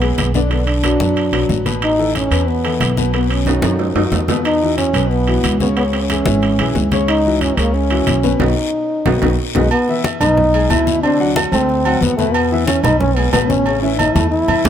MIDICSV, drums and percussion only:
0, 0, Header, 1, 2, 480
1, 0, Start_track
1, 0, Key_signature, 4, "major"
1, 0, Tempo, 328947
1, 740, Time_signature, 4, 2, 24, 8
1, 21439, End_track
2, 0, Start_track
2, 0, Title_t, "Drums"
2, 19, Note_on_c, 9, 63, 31
2, 24, Note_on_c, 9, 65, 67
2, 164, Note_off_c, 9, 63, 0
2, 170, Note_off_c, 9, 65, 0
2, 259, Note_on_c, 9, 73, 71
2, 264, Note_on_c, 9, 63, 88
2, 268, Note_on_c, 9, 65, 87
2, 405, Note_off_c, 9, 73, 0
2, 410, Note_off_c, 9, 63, 0
2, 414, Note_off_c, 9, 65, 0
2, 500, Note_on_c, 9, 73, 62
2, 506, Note_on_c, 9, 63, 81
2, 646, Note_off_c, 9, 73, 0
2, 652, Note_off_c, 9, 63, 0
2, 740, Note_on_c, 9, 65, 62
2, 745, Note_on_c, 9, 74, 67
2, 747, Note_on_c, 9, 63, 31
2, 886, Note_off_c, 9, 65, 0
2, 891, Note_off_c, 9, 74, 0
2, 893, Note_off_c, 9, 63, 0
2, 980, Note_on_c, 9, 65, 69
2, 985, Note_on_c, 9, 63, 33
2, 1126, Note_off_c, 9, 65, 0
2, 1131, Note_off_c, 9, 63, 0
2, 1218, Note_on_c, 9, 73, 74
2, 1219, Note_on_c, 9, 65, 102
2, 1223, Note_on_c, 9, 63, 62
2, 1364, Note_off_c, 9, 73, 0
2, 1365, Note_off_c, 9, 65, 0
2, 1368, Note_off_c, 9, 63, 0
2, 1461, Note_on_c, 9, 63, 92
2, 1461, Note_on_c, 9, 73, 58
2, 1607, Note_off_c, 9, 63, 0
2, 1607, Note_off_c, 9, 73, 0
2, 1698, Note_on_c, 9, 74, 60
2, 1706, Note_on_c, 9, 65, 69
2, 1709, Note_on_c, 9, 63, 35
2, 1844, Note_off_c, 9, 74, 0
2, 1852, Note_off_c, 9, 65, 0
2, 1855, Note_off_c, 9, 63, 0
2, 1940, Note_on_c, 9, 65, 90
2, 1948, Note_on_c, 9, 63, 31
2, 2086, Note_off_c, 9, 65, 0
2, 2094, Note_off_c, 9, 63, 0
2, 2179, Note_on_c, 9, 63, 87
2, 2184, Note_on_c, 9, 73, 72
2, 2325, Note_off_c, 9, 63, 0
2, 2330, Note_off_c, 9, 73, 0
2, 2421, Note_on_c, 9, 65, 62
2, 2422, Note_on_c, 9, 63, 80
2, 2425, Note_on_c, 9, 73, 66
2, 2566, Note_off_c, 9, 65, 0
2, 2568, Note_off_c, 9, 63, 0
2, 2571, Note_off_c, 9, 73, 0
2, 2657, Note_on_c, 9, 65, 97
2, 2664, Note_on_c, 9, 63, 29
2, 2667, Note_on_c, 9, 74, 73
2, 2803, Note_off_c, 9, 65, 0
2, 2810, Note_off_c, 9, 63, 0
2, 2813, Note_off_c, 9, 74, 0
2, 2907, Note_on_c, 9, 63, 34
2, 3053, Note_off_c, 9, 63, 0
2, 3139, Note_on_c, 9, 65, 73
2, 3145, Note_on_c, 9, 63, 58
2, 3146, Note_on_c, 9, 73, 72
2, 3285, Note_off_c, 9, 65, 0
2, 3291, Note_off_c, 9, 63, 0
2, 3292, Note_off_c, 9, 73, 0
2, 3378, Note_on_c, 9, 65, 84
2, 3381, Note_on_c, 9, 63, 32
2, 3388, Note_on_c, 9, 73, 57
2, 3524, Note_off_c, 9, 65, 0
2, 3527, Note_off_c, 9, 63, 0
2, 3534, Note_off_c, 9, 73, 0
2, 3622, Note_on_c, 9, 63, 34
2, 3622, Note_on_c, 9, 74, 58
2, 3768, Note_off_c, 9, 63, 0
2, 3768, Note_off_c, 9, 74, 0
2, 3861, Note_on_c, 9, 65, 75
2, 3867, Note_on_c, 9, 63, 27
2, 4007, Note_off_c, 9, 65, 0
2, 4013, Note_off_c, 9, 63, 0
2, 4090, Note_on_c, 9, 63, 83
2, 4097, Note_on_c, 9, 65, 100
2, 4106, Note_on_c, 9, 73, 75
2, 4236, Note_off_c, 9, 63, 0
2, 4243, Note_off_c, 9, 65, 0
2, 4252, Note_off_c, 9, 73, 0
2, 4338, Note_on_c, 9, 63, 82
2, 4341, Note_on_c, 9, 73, 69
2, 4484, Note_off_c, 9, 63, 0
2, 4487, Note_off_c, 9, 73, 0
2, 4573, Note_on_c, 9, 63, 32
2, 4578, Note_on_c, 9, 65, 68
2, 4583, Note_on_c, 9, 74, 68
2, 4719, Note_off_c, 9, 63, 0
2, 4723, Note_off_c, 9, 65, 0
2, 4729, Note_off_c, 9, 74, 0
2, 4814, Note_on_c, 9, 63, 34
2, 4821, Note_on_c, 9, 65, 69
2, 4960, Note_off_c, 9, 63, 0
2, 4967, Note_off_c, 9, 65, 0
2, 5048, Note_on_c, 9, 63, 62
2, 5059, Note_on_c, 9, 73, 74
2, 5062, Note_on_c, 9, 65, 81
2, 5194, Note_off_c, 9, 63, 0
2, 5205, Note_off_c, 9, 73, 0
2, 5207, Note_off_c, 9, 65, 0
2, 5285, Note_on_c, 9, 63, 96
2, 5296, Note_on_c, 9, 65, 84
2, 5296, Note_on_c, 9, 73, 62
2, 5431, Note_off_c, 9, 63, 0
2, 5442, Note_off_c, 9, 65, 0
2, 5442, Note_off_c, 9, 73, 0
2, 5529, Note_on_c, 9, 63, 32
2, 5533, Note_on_c, 9, 66, 81
2, 5539, Note_on_c, 9, 74, 64
2, 5675, Note_off_c, 9, 63, 0
2, 5679, Note_off_c, 9, 66, 0
2, 5685, Note_off_c, 9, 74, 0
2, 5770, Note_on_c, 9, 63, 29
2, 5774, Note_on_c, 9, 66, 109
2, 5916, Note_off_c, 9, 63, 0
2, 5920, Note_off_c, 9, 66, 0
2, 6009, Note_on_c, 9, 63, 89
2, 6017, Note_on_c, 9, 73, 78
2, 6018, Note_on_c, 9, 66, 87
2, 6155, Note_off_c, 9, 63, 0
2, 6163, Note_off_c, 9, 73, 0
2, 6164, Note_off_c, 9, 66, 0
2, 6250, Note_on_c, 9, 63, 80
2, 6254, Note_on_c, 9, 66, 97
2, 6257, Note_on_c, 9, 73, 65
2, 6396, Note_off_c, 9, 63, 0
2, 6400, Note_off_c, 9, 66, 0
2, 6403, Note_off_c, 9, 73, 0
2, 6490, Note_on_c, 9, 74, 75
2, 6491, Note_on_c, 9, 63, 31
2, 6497, Note_on_c, 9, 65, 94
2, 6636, Note_off_c, 9, 74, 0
2, 6637, Note_off_c, 9, 63, 0
2, 6643, Note_off_c, 9, 65, 0
2, 6733, Note_on_c, 9, 63, 35
2, 6879, Note_off_c, 9, 63, 0
2, 6973, Note_on_c, 9, 65, 69
2, 6973, Note_on_c, 9, 73, 78
2, 6975, Note_on_c, 9, 63, 55
2, 7118, Note_off_c, 9, 65, 0
2, 7119, Note_off_c, 9, 73, 0
2, 7121, Note_off_c, 9, 63, 0
2, 7211, Note_on_c, 9, 65, 89
2, 7219, Note_on_c, 9, 73, 69
2, 7221, Note_on_c, 9, 63, 32
2, 7357, Note_off_c, 9, 65, 0
2, 7365, Note_off_c, 9, 73, 0
2, 7366, Note_off_c, 9, 63, 0
2, 7457, Note_on_c, 9, 74, 66
2, 7465, Note_on_c, 9, 63, 34
2, 7603, Note_off_c, 9, 74, 0
2, 7611, Note_off_c, 9, 63, 0
2, 7695, Note_on_c, 9, 63, 29
2, 7696, Note_on_c, 9, 65, 66
2, 7841, Note_off_c, 9, 63, 0
2, 7842, Note_off_c, 9, 65, 0
2, 7931, Note_on_c, 9, 63, 79
2, 7936, Note_on_c, 9, 65, 92
2, 7937, Note_on_c, 9, 73, 77
2, 8077, Note_off_c, 9, 63, 0
2, 8082, Note_off_c, 9, 65, 0
2, 8083, Note_off_c, 9, 73, 0
2, 8176, Note_on_c, 9, 63, 78
2, 8178, Note_on_c, 9, 73, 64
2, 8322, Note_off_c, 9, 63, 0
2, 8324, Note_off_c, 9, 73, 0
2, 8414, Note_on_c, 9, 65, 69
2, 8418, Note_on_c, 9, 63, 31
2, 8426, Note_on_c, 9, 74, 72
2, 8560, Note_off_c, 9, 65, 0
2, 8564, Note_off_c, 9, 63, 0
2, 8572, Note_off_c, 9, 74, 0
2, 8656, Note_on_c, 9, 63, 34
2, 8656, Note_on_c, 9, 65, 66
2, 8802, Note_off_c, 9, 63, 0
2, 8802, Note_off_c, 9, 65, 0
2, 8896, Note_on_c, 9, 63, 55
2, 8898, Note_on_c, 9, 65, 89
2, 8904, Note_on_c, 9, 73, 75
2, 9042, Note_off_c, 9, 63, 0
2, 9044, Note_off_c, 9, 65, 0
2, 9050, Note_off_c, 9, 73, 0
2, 9128, Note_on_c, 9, 63, 100
2, 9144, Note_on_c, 9, 73, 64
2, 9274, Note_off_c, 9, 63, 0
2, 9290, Note_off_c, 9, 73, 0
2, 9370, Note_on_c, 9, 63, 33
2, 9379, Note_on_c, 9, 65, 72
2, 9384, Note_on_c, 9, 74, 65
2, 9516, Note_off_c, 9, 63, 0
2, 9525, Note_off_c, 9, 65, 0
2, 9530, Note_off_c, 9, 74, 0
2, 9607, Note_on_c, 9, 63, 29
2, 9615, Note_on_c, 9, 65, 96
2, 9753, Note_off_c, 9, 63, 0
2, 9761, Note_off_c, 9, 65, 0
2, 9852, Note_on_c, 9, 63, 93
2, 9860, Note_on_c, 9, 73, 70
2, 9998, Note_off_c, 9, 63, 0
2, 10006, Note_off_c, 9, 73, 0
2, 10091, Note_on_c, 9, 63, 89
2, 10096, Note_on_c, 9, 65, 65
2, 10097, Note_on_c, 9, 73, 60
2, 10237, Note_off_c, 9, 63, 0
2, 10242, Note_off_c, 9, 65, 0
2, 10243, Note_off_c, 9, 73, 0
2, 10334, Note_on_c, 9, 63, 33
2, 10334, Note_on_c, 9, 74, 68
2, 10336, Note_on_c, 9, 65, 96
2, 10480, Note_off_c, 9, 63, 0
2, 10480, Note_off_c, 9, 74, 0
2, 10482, Note_off_c, 9, 65, 0
2, 10576, Note_on_c, 9, 63, 37
2, 10721, Note_off_c, 9, 63, 0
2, 10814, Note_on_c, 9, 63, 56
2, 10816, Note_on_c, 9, 65, 73
2, 10825, Note_on_c, 9, 73, 70
2, 10960, Note_off_c, 9, 63, 0
2, 10962, Note_off_c, 9, 65, 0
2, 10971, Note_off_c, 9, 73, 0
2, 11052, Note_on_c, 9, 65, 85
2, 11054, Note_on_c, 9, 63, 32
2, 11060, Note_on_c, 9, 73, 56
2, 11198, Note_off_c, 9, 65, 0
2, 11200, Note_off_c, 9, 63, 0
2, 11206, Note_off_c, 9, 73, 0
2, 11293, Note_on_c, 9, 63, 35
2, 11297, Note_on_c, 9, 74, 67
2, 11439, Note_off_c, 9, 63, 0
2, 11443, Note_off_c, 9, 74, 0
2, 11534, Note_on_c, 9, 65, 74
2, 11544, Note_on_c, 9, 63, 31
2, 11680, Note_off_c, 9, 65, 0
2, 11690, Note_off_c, 9, 63, 0
2, 11773, Note_on_c, 9, 65, 91
2, 11773, Note_on_c, 9, 73, 74
2, 11780, Note_on_c, 9, 63, 84
2, 11919, Note_off_c, 9, 65, 0
2, 11919, Note_off_c, 9, 73, 0
2, 11926, Note_off_c, 9, 63, 0
2, 12016, Note_on_c, 9, 73, 61
2, 12025, Note_on_c, 9, 63, 77
2, 12162, Note_off_c, 9, 73, 0
2, 12171, Note_off_c, 9, 63, 0
2, 12251, Note_on_c, 9, 74, 99
2, 12254, Note_on_c, 9, 63, 92
2, 12255, Note_on_c, 9, 65, 97
2, 12397, Note_off_c, 9, 74, 0
2, 12400, Note_off_c, 9, 63, 0
2, 12400, Note_off_c, 9, 65, 0
2, 13215, Note_on_c, 9, 63, 92
2, 13216, Note_on_c, 9, 65, 99
2, 13220, Note_on_c, 9, 74, 95
2, 13361, Note_off_c, 9, 63, 0
2, 13361, Note_off_c, 9, 65, 0
2, 13366, Note_off_c, 9, 74, 0
2, 13451, Note_on_c, 9, 65, 102
2, 13460, Note_on_c, 9, 63, 82
2, 13463, Note_on_c, 9, 74, 106
2, 13597, Note_off_c, 9, 65, 0
2, 13606, Note_off_c, 9, 63, 0
2, 13609, Note_off_c, 9, 74, 0
2, 13931, Note_on_c, 9, 65, 84
2, 13938, Note_on_c, 9, 74, 84
2, 13946, Note_on_c, 9, 63, 89
2, 14077, Note_off_c, 9, 65, 0
2, 14084, Note_off_c, 9, 74, 0
2, 14092, Note_off_c, 9, 63, 0
2, 14170, Note_on_c, 9, 68, 111
2, 14178, Note_on_c, 9, 74, 73
2, 14183, Note_on_c, 9, 63, 36
2, 14316, Note_off_c, 9, 68, 0
2, 14324, Note_off_c, 9, 74, 0
2, 14329, Note_off_c, 9, 63, 0
2, 14426, Note_on_c, 9, 63, 34
2, 14572, Note_off_c, 9, 63, 0
2, 14655, Note_on_c, 9, 63, 105
2, 14659, Note_on_c, 9, 73, 76
2, 14661, Note_on_c, 9, 68, 80
2, 14801, Note_off_c, 9, 63, 0
2, 14805, Note_off_c, 9, 73, 0
2, 14807, Note_off_c, 9, 68, 0
2, 14893, Note_on_c, 9, 68, 107
2, 14901, Note_on_c, 9, 73, 66
2, 14902, Note_on_c, 9, 64, 83
2, 15039, Note_off_c, 9, 68, 0
2, 15047, Note_off_c, 9, 73, 0
2, 15048, Note_off_c, 9, 64, 0
2, 15137, Note_on_c, 9, 63, 38
2, 15137, Note_on_c, 9, 64, 74
2, 15148, Note_on_c, 9, 74, 68
2, 15283, Note_off_c, 9, 63, 0
2, 15283, Note_off_c, 9, 64, 0
2, 15294, Note_off_c, 9, 74, 0
2, 15379, Note_on_c, 9, 63, 29
2, 15379, Note_on_c, 9, 68, 77
2, 15525, Note_off_c, 9, 63, 0
2, 15525, Note_off_c, 9, 68, 0
2, 15617, Note_on_c, 9, 68, 107
2, 15618, Note_on_c, 9, 63, 94
2, 15622, Note_on_c, 9, 73, 83
2, 15763, Note_off_c, 9, 68, 0
2, 15764, Note_off_c, 9, 63, 0
2, 15768, Note_off_c, 9, 73, 0
2, 15862, Note_on_c, 9, 63, 80
2, 15865, Note_on_c, 9, 73, 71
2, 16008, Note_off_c, 9, 63, 0
2, 16011, Note_off_c, 9, 73, 0
2, 16100, Note_on_c, 9, 68, 88
2, 16101, Note_on_c, 9, 74, 77
2, 16102, Note_on_c, 9, 63, 37
2, 16246, Note_off_c, 9, 68, 0
2, 16247, Note_off_c, 9, 74, 0
2, 16248, Note_off_c, 9, 63, 0
2, 16338, Note_on_c, 9, 63, 39
2, 16484, Note_off_c, 9, 63, 0
2, 16576, Note_on_c, 9, 63, 99
2, 16583, Note_on_c, 9, 68, 120
2, 16588, Note_on_c, 9, 73, 79
2, 16722, Note_off_c, 9, 63, 0
2, 16729, Note_off_c, 9, 68, 0
2, 16734, Note_off_c, 9, 73, 0
2, 16815, Note_on_c, 9, 68, 77
2, 16826, Note_on_c, 9, 63, 34
2, 16827, Note_on_c, 9, 73, 66
2, 16961, Note_off_c, 9, 68, 0
2, 16972, Note_off_c, 9, 63, 0
2, 16973, Note_off_c, 9, 73, 0
2, 17060, Note_on_c, 9, 63, 35
2, 17070, Note_on_c, 9, 74, 69
2, 17206, Note_off_c, 9, 63, 0
2, 17216, Note_off_c, 9, 74, 0
2, 17295, Note_on_c, 9, 68, 106
2, 17306, Note_on_c, 9, 63, 31
2, 17441, Note_off_c, 9, 68, 0
2, 17452, Note_off_c, 9, 63, 0
2, 17544, Note_on_c, 9, 63, 89
2, 17547, Note_on_c, 9, 73, 82
2, 17690, Note_off_c, 9, 63, 0
2, 17693, Note_off_c, 9, 73, 0
2, 17782, Note_on_c, 9, 63, 73
2, 17785, Note_on_c, 9, 73, 68
2, 17928, Note_off_c, 9, 63, 0
2, 17931, Note_off_c, 9, 73, 0
2, 18012, Note_on_c, 9, 68, 111
2, 18026, Note_on_c, 9, 74, 78
2, 18029, Note_on_c, 9, 63, 35
2, 18158, Note_off_c, 9, 68, 0
2, 18172, Note_off_c, 9, 74, 0
2, 18175, Note_off_c, 9, 63, 0
2, 18263, Note_on_c, 9, 63, 37
2, 18409, Note_off_c, 9, 63, 0
2, 18493, Note_on_c, 9, 68, 74
2, 18496, Note_on_c, 9, 63, 91
2, 18505, Note_on_c, 9, 73, 79
2, 18639, Note_off_c, 9, 68, 0
2, 18642, Note_off_c, 9, 63, 0
2, 18651, Note_off_c, 9, 73, 0
2, 18731, Note_on_c, 9, 68, 100
2, 18743, Note_on_c, 9, 64, 88
2, 18743, Note_on_c, 9, 73, 65
2, 18877, Note_off_c, 9, 68, 0
2, 18889, Note_off_c, 9, 64, 0
2, 18889, Note_off_c, 9, 73, 0
2, 18976, Note_on_c, 9, 63, 36
2, 18976, Note_on_c, 9, 64, 78
2, 18976, Note_on_c, 9, 74, 72
2, 19122, Note_off_c, 9, 63, 0
2, 19122, Note_off_c, 9, 64, 0
2, 19122, Note_off_c, 9, 74, 0
2, 19209, Note_on_c, 9, 68, 74
2, 19221, Note_on_c, 9, 63, 35
2, 19355, Note_off_c, 9, 68, 0
2, 19367, Note_off_c, 9, 63, 0
2, 19449, Note_on_c, 9, 66, 74
2, 19449, Note_on_c, 9, 68, 105
2, 19456, Note_on_c, 9, 63, 88
2, 19460, Note_on_c, 9, 73, 83
2, 19595, Note_off_c, 9, 66, 0
2, 19595, Note_off_c, 9, 68, 0
2, 19601, Note_off_c, 9, 63, 0
2, 19606, Note_off_c, 9, 73, 0
2, 19697, Note_on_c, 9, 63, 92
2, 19700, Note_on_c, 9, 73, 69
2, 19843, Note_off_c, 9, 63, 0
2, 19846, Note_off_c, 9, 73, 0
2, 19928, Note_on_c, 9, 68, 86
2, 19940, Note_on_c, 9, 74, 76
2, 19944, Note_on_c, 9, 63, 33
2, 20074, Note_off_c, 9, 68, 0
2, 20086, Note_off_c, 9, 74, 0
2, 20090, Note_off_c, 9, 63, 0
2, 20186, Note_on_c, 9, 63, 35
2, 20332, Note_off_c, 9, 63, 0
2, 20413, Note_on_c, 9, 68, 120
2, 20418, Note_on_c, 9, 63, 80
2, 20421, Note_on_c, 9, 73, 77
2, 20559, Note_off_c, 9, 68, 0
2, 20564, Note_off_c, 9, 63, 0
2, 20567, Note_off_c, 9, 73, 0
2, 20657, Note_on_c, 9, 68, 84
2, 20658, Note_on_c, 9, 63, 105
2, 20658, Note_on_c, 9, 73, 67
2, 20803, Note_off_c, 9, 68, 0
2, 20804, Note_off_c, 9, 63, 0
2, 20804, Note_off_c, 9, 73, 0
2, 20892, Note_on_c, 9, 74, 68
2, 21038, Note_off_c, 9, 74, 0
2, 21134, Note_on_c, 9, 64, 69
2, 21134, Note_on_c, 9, 68, 113
2, 21280, Note_off_c, 9, 64, 0
2, 21280, Note_off_c, 9, 68, 0
2, 21379, Note_on_c, 9, 64, 97
2, 21379, Note_on_c, 9, 73, 83
2, 21381, Note_on_c, 9, 66, 79
2, 21439, Note_off_c, 9, 64, 0
2, 21439, Note_off_c, 9, 66, 0
2, 21439, Note_off_c, 9, 73, 0
2, 21439, End_track
0, 0, End_of_file